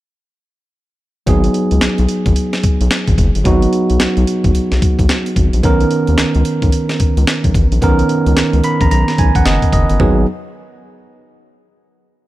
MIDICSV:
0, 0, Header, 1, 4, 480
1, 0, Start_track
1, 0, Key_signature, 5, "minor"
1, 0, Tempo, 545455
1, 1118, Time_signature, 4, 2, 24, 8
1, 10802, End_track
2, 0, Start_track
2, 0, Title_t, "Tine electric piano"
2, 0, Program_c, 0, 4
2, 1113, Note_on_c, 0, 54, 73
2, 1119, Note_on_c, 0, 59, 66
2, 1126, Note_on_c, 0, 63, 61
2, 1133, Note_on_c, 0, 68, 80
2, 1303, Control_c, 0, 64, 127
2, 3001, Note_off_c, 0, 54, 0
2, 3004, Note_off_c, 0, 59, 0
2, 3007, Note_off_c, 0, 63, 0
2, 3011, Note_off_c, 0, 68, 0
2, 3031, Note_on_c, 0, 54, 72
2, 3038, Note_on_c, 0, 59, 68
2, 3045, Note_on_c, 0, 63, 69
2, 3052, Note_on_c, 0, 66, 81
2, 4919, Note_off_c, 0, 54, 0
2, 4923, Note_off_c, 0, 59, 0
2, 4927, Note_off_c, 0, 63, 0
2, 4930, Note_off_c, 0, 66, 0
2, 4954, Note_on_c, 0, 51, 70
2, 4961, Note_on_c, 0, 59, 73
2, 4968, Note_on_c, 0, 61, 68
2, 4970, Control_c, 0, 64, 0
2, 4974, Note_on_c, 0, 70, 85
2, 5146, Control_c, 0, 64, 127
2, 6841, Note_off_c, 0, 51, 0
2, 6844, Note_off_c, 0, 59, 0
2, 6848, Note_off_c, 0, 61, 0
2, 6851, Note_off_c, 0, 70, 0
2, 6876, Note_on_c, 0, 51, 70
2, 6882, Note_on_c, 0, 59, 73
2, 6890, Note_on_c, 0, 61, 71
2, 6896, Note_on_c, 0, 70, 84
2, 7606, Note_on_c, 0, 83, 70
2, 7741, Note_off_c, 0, 83, 0
2, 7755, Note_on_c, 0, 82, 69
2, 7834, Note_off_c, 0, 82, 0
2, 7844, Note_on_c, 0, 82, 73
2, 8065, Note_off_c, 0, 82, 0
2, 8085, Note_on_c, 0, 80, 68
2, 8220, Note_off_c, 0, 80, 0
2, 8234, Note_on_c, 0, 78, 67
2, 8316, Note_off_c, 0, 78, 0
2, 8323, Note_on_c, 0, 75, 71
2, 8544, Note_off_c, 0, 75, 0
2, 8564, Note_on_c, 0, 75, 68
2, 8762, Note_off_c, 0, 51, 0
2, 8765, Note_off_c, 0, 59, 0
2, 8769, Note_off_c, 0, 61, 0
2, 8772, Note_off_c, 0, 70, 0
2, 8785, Note_off_c, 0, 75, 0
2, 8804, Note_on_c, 0, 59, 74
2, 8805, Note_on_c, 0, 54, 86
2, 8805, Note_on_c, 0, 63, 74
2, 8805, Note_on_c, 0, 68, 82
2, 8808, Control_c, 0, 64, 0
2, 9025, Note_off_c, 0, 54, 0
2, 9025, Note_off_c, 0, 59, 0
2, 9025, Note_off_c, 0, 63, 0
2, 9025, Note_off_c, 0, 68, 0
2, 10802, End_track
3, 0, Start_track
3, 0, Title_t, "Analog synth bass"
3, 0, Program_c, 1, 38
3, 1118, Note_on_c, 1, 32, 110
3, 1307, Note_off_c, 1, 32, 0
3, 1511, Note_on_c, 1, 37, 85
3, 1581, Note_off_c, 1, 37, 0
3, 1602, Note_on_c, 1, 35, 50
3, 1661, Note_off_c, 1, 35, 0
3, 1751, Note_on_c, 1, 35, 98
3, 1821, Note_off_c, 1, 35, 0
3, 1989, Note_on_c, 1, 32, 99
3, 2060, Note_off_c, 1, 32, 0
3, 2323, Note_on_c, 1, 35, 49
3, 2381, Note_off_c, 1, 35, 0
3, 2472, Note_on_c, 1, 35, 99
3, 2542, Note_off_c, 1, 35, 0
3, 2708, Note_on_c, 1, 32, 89
3, 2780, Note_off_c, 1, 32, 0
3, 2799, Note_on_c, 1, 30, 104
3, 2916, Note_off_c, 1, 30, 0
3, 2951, Note_on_c, 1, 31, 83
3, 3021, Note_off_c, 1, 31, 0
3, 3040, Note_on_c, 1, 32, 112
3, 3228, Note_off_c, 1, 32, 0
3, 3435, Note_on_c, 1, 35, 89
3, 3504, Note_off_c, 1, 35, 0
3, 3527, Note_on_c, 1, 35, 45
3, 3584, Note_off_c, 1, 35, 0
3, 3672, Note_on_c, 1, 35, 103
3, 3742, Note_off_c, 1, 35, 0
3, 3911, Note_on_c, 1, 32, 92
3, 3981, Note_off_c, 1, 32, 0
3, 4004, Note_on_c, 1, 35, 48
3, 4062, Note_off_c, 1, 35, 0
3, 4154, Note_on_c, 1, 35, 86
3, 4223, Note_off_c, 1, 35, 0
3, 4391, Note_on_c, 1, 35, 92
3, 4461, Note_off_c, 1, 35, 0
3, 4721, Note_on_c, 1, 32, 84
3, 4837, Note_off_c, 1, 32, 0
3, 4871, Note_on_c, 1, 34, 88
3, 4941, Note_off_c, 1, 34, 0
3, 4961, Note_on_c, 1, 35, 116
3, 5148, Note_off_c, 1, 35, 0
3, 5354, Note_on_c, 1, 39, 88
3, 5423, Note_off_c, 1, 39, 0
3, 5443, Note_on_c, 1, 37, 49
3, 5501, Note_off_c, 1, 37, 0
3, 5592, Note_on_c, 1, 37, 92
3, 5662, Note_off_c, 1, 37, 0
3, 5830, Note_on_c, 1, 35, 94
3, 5901, Note_off_c, 1, 35, 0
3, 6163, Note_on_c, 1, 37, 52
3, 6222, Note_off_c, 1, 37, 0
3, 6311, Note_on_c, 1, 37, 91
3, 6381, Note_off_c, 1, 37, 0
3, 6551, Note_on_c, 1, 35, 86
3, 6621, Note_off_c, 1, 35, 0
3, 6642, Note_on_c, 1, 33, 87
3, 6757, Note_off_c, 1, 33, 0
3, 6791, Note_on_c, 1, 34, 81
3, 6861, Note_off_c, 1, 34, 0
3, 6882, Note_on_c, 1, 35, 104
3, 7069, Note_off_c, 1, 35, 0
3, 7273, Note_on_c, 1, 37, 92
3, 7342, Note_off_c, 1, 37, 0
3, 7362, Note_on_c, 1, 37, 48
3, 7421, Note_off_c, 1, 37, 0
3, 7511, Note_on_c, 1, 37, 87
3, 7581, Note_off_c, 1, 37, 0
3, 7753, Note_on_c, 1, 34, 84
3, 7822, Note_off_c, 1, 34, 0
3, 7844, Note_on_c, 1, 35, 96
3, 7959, Note_off_c, 1, 35, 0
3, 8084, Note_on_c, 1, 35, 96
3, 8199, Note_off_c, 1, 35, 0
3, 8231, Note_on_c, 1, 34, 84
3, 8301, Note_off_c, 1, 34, 0
3, 8324, Note_on_c, 1, 30, 97
3, 8439, Note_off_c, 1, 30, 0
3, 8561, Note_on_c, 1, 30, 84
3, 8677, Note_off_c, 1, 30, 0
3, 8713, Note_on_c, 1, 31, 88
3, 8782, Note_off_c, 1, 31, 0
3, 8800, Note_on_c, 1, 32, 105
3, 9023, Note_off_c, 1, 32, 0
3, 10802, End_track
4, 0, Start_track
4, 0, Title_t, "Drums"
4, 1116, Note_on_c, 9, 36, 99
4, 1117, Note_on_c, 9, 42, 69
4, 1204, Note_off_c, 9, 36, 0
4, 1205, Note_off_c, 9, 42, 0
4, 1265, Note_on_c, 9, 42, 50
4, 1353, Note_off_c, 9, 42, 0
4, 1357, Note_on_c, 9, 42, 58
4, 1445, Note_off_c, 9, 42, 0
4, 1505, Note_on_c, 9, 42, 47
4, 1593, Note_off_c, 9, 42, 0
4, 1595, Note_on_c, 9, 38, 104
4, 1595, Note_on_c, 9, 42, 73
4, 1601, Note_on_c, 9, 39, 85
4, 1683, Note_off_c, 9, 38, 0
4, 1683, Note_off_c, 9, 42, 0
4, 1689, Note_off_c, 9, 39, 0
4, 1743, Note_on_c, 9, 42, 44
4, 1831, Note_off_c, 9, 42, 0
4, 1835, Note_on_c, 9, 42, 78
4, 1923, Note_off_c, 9, 42, 0
4, 1987, Note_on_c, 9, 36, 94
4, 1987, Note_on_c, 9, 42, 52
4, 2075, Note_off_c, 9, 36, 0
4, 2075, Note_off_c, 9, 42, 0
4, 2076, Note_on_c, 9, 42, 83
4, 2164, Note_off_c, 9, 42, 0
4, 2226, Note_on_c, 9, 42, 49
4, 2227, Note_on_c, 9, 38, 60
4, 2314, Note_off_c, 9, 42, 0
4, 2315, Note_off_c, 9, 38, 0
4, 2319, Note_on_c, 9, 42, 81
4, 2321, Note_on_c, 9, 36, 100
4, 2407, Note_off_c, 9, 42, 0
4, 2409, Note_off_c, 9, 36, 0
4, 2470, Note_on_c, 9, 42, 53
4, 2558, Note_off_c, 9, 42, 0
4, 2558, Note_on_c, 9, 38, 103
4, 2558, Note_on_c, 9, 42, 62
4, 2564, Note_on_c, 9, 39, 88
4, 2646, Note_off_c, 9, 38, 0
4, 2646, Note_off_c, 9, 42, 0
4, 2652, Note_off_c, 9, 39, 0
4, 2706, Note_on_c, 9, 42, 52
4, 2707, Note_on_c, 9, 36, 82
4, 2794, Note_off_c, 9, 42, 0
4, 2795, Note_off_c, 9, 36, 0
4, 2797, Note_on_c, 9, 36, 98
4, 2799, Note_on_c, 9, 42, 76
4, 2885, Note_off_c, 9, 36, 0
4, 2887, Note_off_c, 9, 42, 0
4, 2949, Note_on_c, 9, 42, 55
4, 3037, Note_off_c, 9, 42, 0
4, 3038, Note_on_c, 9, 36, 109
4, 3038, Note_on_c, 9, 42, 72
4, 3126, Note_off_c, 9, 36, 0
4, 3126, Note_off_c, 9, 42, 0
4, 3189, Note_on_c, 9, 42, 49
4, 3277, Note_off_c, 9, 42, 0
4, 3279, Note_on_c, 9, 42, 60
4, 3367, Note_off_c, 9, 42, 0
4, 3429, Note_on_c, 9, 42, 48
4, 3517, Note_off_c, 9, 42, 0
4, 3518, Note_on_c, 9, 38, 111
4, 3519, Note_on_c, 9, 42, 72
4, 3525, Note_on_c, 9, 39, 85
4, 3606, Note_off_c, 9, 38, 0
4, 3607, Note_off_c, 9, 42, 0
4, 3613, Note_off_c, 9, 39, 0
4, 3668, Note_on_c, 9, 42, 41
4, 3756, Note_off_c, 9, 42, 0
4, 3761, Note_on_c, 9, 42, 81
4, 3849, Note_off_c, 9, 42, 0
4, 3909, Note_on_c, 9, 36, 100
4, 3909, Note_on_c, 9, 42, 48
4, 3997, Note_off_c, 9, 36, 0
4, 3997, Note_off_c, 9, 42, 0
4, 4002, Note_on_c, 9, 42, 76
4, 4090, Note_off_c, 9, 42, 0
4, 4150, Note_on_c, 9, 42, 45
4, 4151, Note_on_c, 9, 38, 57
4, 4238, Note_off_c, 9, 42, 0
4, 4239, Note_off_c, 9, 38, 0
4, 4243, Note_on_c, 9, 36, 104
4, 4243, Note_on_c, 9, 42, 78
4, 4331, Note_off_c, 9, 36, 0
4, 4331, Note_off_c, 9, 42, 0
4, 4388, Note_on_c, 9, 36, 96
4, 4393, Note_on_c, 9, 42, 57
4, 4476, Note_off_c, 9, 36, 0
4, 4481, Note_off_c, 9, 42, 0
4, 4481, Note_on_c, 9, 38, 107
4, 4481, Note_on_c, 9, 42, 65
4, 4487, Note_on_c, 9, 39, 88
4, 4569, Note_off_c, 9, 38, 0
4, 4569, Note_off_c, 9, 42, 0
4, 4575, Note_off_c, 9, 39, 0
4, 4630, Note_on_c, 9, 42, 56
4, 4718, Note_off_c, 9, 42, 0
4, 4719, Note_on_c, 9, 36, 93
4, 4721, Note_on_c, 9, 42, 71
4, 4807, Note_off_c, 9, 36, 0
4, 4809, Note_off_c, 9, 42, 0
4, 4869, Note_on_c, 9, 42, 59
4, 4957, Note_off_c, 9, 42, 0
4, 4958, Note_on_c, 9, 36, 106
4, 4959, Note_on_c, 9, 42, 74
4, 5046, Note_off_c, 9, 36, 0
4, 5047, Note_off_c, 9, 42, 0
4, 5108, Note_on_c, 9, 42, 48
4, 5196, Note_off_c, 9, 42, 0
4, 5197, Note_on_c, 9, 42, 62
4, 5285, Note_off_c, 9, 42, 0
4, 5345, Note_on_c, 9, 42, 45
4, 5433, Note_off_c, 9, 42, 0
4, 5436, Note_on_c, 9, 38, 111
4, 5436, Note_on_c, 9, 42, 69
4, 5442, Note_on_c, 9, 39, 91
4, 5524, Note_off_c, 9, 38, 0
4, 5524, Note_off_c, 9, 42, 0
4, 5530, Note_off_c, 9, 39, 0
4, 5584, Note_on_c, 9, 42, 42
4, 5672, Note_off_c, 9, 42, 0
4, 5676, Note_on_c, 9, 42, 79
4, 5764, Note_off_c, 9, 42, 0
4, 5827, Note_on_c, 9, 42, 50
4, 5828, Note_on_c, 9, 36, 97
4, 5915, Note_off_c, 9, 42, 0
4, 5916, Note_off_c, 9, 36, 0
4, 5917, Note_on_c, 9, 42, 81
4, 6005, Note_off_c, 9, 42, 0
4, 6065, Note_on_c, 9, 42, 48
4, 6066, Note_on_c, 9, 38, 59
4, 6153, Note_off_c, 9, 42, 0
4, 6154, Note_off_c, 9, 38, 0
4, 6158, Note_on_c, 9, 42, 80
4, 6161, Note_on_c, 9, 36, 106
4, 6246, Note_off_c, 9, 42, 0
4, 6249, Note_off_c, 9, 36, 0
4, 6311, Note_on_c, 9, 42, 55
4, 6399, Note_off_c, 9, 42, 0
4, 6401, Note_on_c, 9, 38, 107
4, 6401, Note_on_c, 9, 42, 64
4, 6407, Note_on_c, 9, 39, 92
4, 6489, Note_off_c, 9, 38, 0
4, 6489, Note_off_c, 9, 42, 0
4, 6495, Note_off_c, 9, 39, 0
4, 6548, Note_on_c, 9, 36, 79
4, 6549, Note_on_c, 9, 42, 55
4, 6636, Note_off_c, 9, 36, 0
4, 6637, Note_off_c, 9, 42, 0
4, 6639, Note_on_c, 9, 36, 97
4, 6643, Note_on_c, 9, 42, 71
4, 6727, Note_off_c, 9, 36, 0
4, 6731, Note_off_c, 9, 42, 0
4, 6792, Note_on_c, 9, 42, 52
4, 6880, Note_off_c, 9, 42, 0
4, 6880, Note_on_c, 9, 36, 106
4, 6882, Note_on_c, 9, 42, 76
4, 6968, Note_off_c, 9, 36, 0
4, 6970, Note_off_c, 9, 42, 0
4, 7031, Note_on_c, 9, 42, 50
4, 7119, Note_off_c, 9, 42, 0
4, 7121, Note_on_c, 9, 42, 59
4, 7209, Note_off_c, 9, 42, 0
4, 7273, Note_on_c, 9, 42, 50
4, 7361, Note_off_c, 9, 42, 0
4, 7363, Note_on_c, 9, 38, 107
4, 7363, Note_on_c, 9, 42, 67
4, 7369, Note_on_c, 9, 39, 91
4, 7451, Note_off_c, 9, 38, 0
4, 7451, Note_off_c, 9, 42, 0
4, 7457, Note_off_c, 9, 39, 0
4, 7509, Note_on_c, 9, 42, 39
4, 7597, Note_off_c, 9, 42, 0
4, 7599, Note_on_c, 9, 42, 80
4, 7687, Note_off_c, 9, 42, 0
4, 7750, Note_on_c, 9, 36, 101
4, 7751, Note_on_c, 9, 42, 49
4, 7838, Note_off_c, 9, 36, 0
4, 7839, Note_off_c, 9, 42, 0
4, 7843, Note_on_c, 9, 42, 85
4, 7931, Note_off_c, 9, 42, 0
4, 7991, Note_on_c, 9, 42, 44
4, 7992, Note_on_c, 9, 38, 53
4, 8079, Note_off_c, 9, 42, 0
4, 8080, Note_off_c, 9, 38, 0
4, 8081, Note_on_c, 9, 42, 75
4, 8082, Note_on_c, 9, 36, 104
4, 8169, Note_off_c, 9, 42, 0
4, 8170, Note_off_c, 9, 36, 0
4, 8229, Note_on_c, 9, 36, 87
4, 8232, Note_on_c, 9, 42, 55
4, 8317, Note_off_c, 9, 36, 0
4, 8320, Note_off_c, 9, 42, 0
4, 8321, Note_on_c, 9, 38, 108
4, 8321, Note_on_c, 9, 42, 71
4, 8327, Note_on_c, 9, 39, 86
4, 8409, Note_off_c, 9, 38, 0
4, 8409, Note_off_c, 9, 42, 0
4, 8415, Note_off_c, 9, 39, 0
4, 8468, Note_on_c, 9, 36, 76
4, 8469, Note_on_c, 9, 42, 55
4, 8556, Note_off_c, 9, 36, 0
4, 8557, Note_off_c, 9, 42, 0
4, 8558, Note_on_c, 9, 36, 95
4, 8561, Note_on_c, 9, 42, 74
4, 8646, Note_off_c, 9, 36, 0
4, 8649, Note_off_c, 9, 42, 0
4, 8707, Note_on_c, 9, 42, 52
4, 8795, Note_off_c, 9, 42, 0
4, 8798, Note_on_c, 9, 36, 90
4, 8798, Note_on_c, 9, 43, 99
4, 8886, Note_off_c, 9, 36, 0
4, 8886, Note_off_c, 9, 43, 0
4, 10802, End_track
0, 0, End_of_file